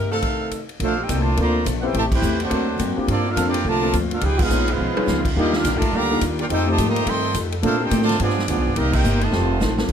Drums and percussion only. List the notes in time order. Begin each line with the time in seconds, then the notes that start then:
0.22 kick, crash, ride
0.51 kick, hi-hat pedal, ride
0.69 ride
0.80 kick, ride
1.09 kick, hi-hat pedal, ride
1.37 kick, ride
1.66 kick, hi-hat pedal, ride
1.94 kick, ride
2.12 kick, crash
2.22 hi-hat pedal
2.40 ride
2.51 kick, ride
2.79 kick, hi-hat pedal, ride
3.08 kick, ride
3.37 kick, hi-hat pedal, ride
3.54 ride
3.65 kick
3.93 kick, hi-hat pedal, ride
4.11 ride
4.21 kick, ride
4.39 kick, crash
4.50 hi-hat pedal
4.68 ride
4.97 high tom
5.08 snare, hi-hat pedal
5.25 kick, crash
5.36 kick
5.53 snare
5.64 kick, snare, hi-hat pedal, ride
5.82 kick, ride
5.93 kick
6.21 kick, hi-hat pedal, ride
6.39 ride
6.50 kick, ride
6.78 kick, hi-hat pedal, ride
6.96 ride
7.06 kick, ride
7.34 kick, hi-hat pedal, ride
7.52 ride
7.63 kick, ride
7.91 kick, hi-hat pedal, ride
8.02 snare
8.09 snare, ride
8.20 kick, ride
8.30 snare
8.39 snare
8.48 kick, hi-hat pedal, ride
8.76 kick, ride
8.93 kick, crash
9.04 hi-hat pedal
9.21 ride
9.32 snare
9.61 snare, hi-hat pedal
9.78 snare
9.88 kick, crash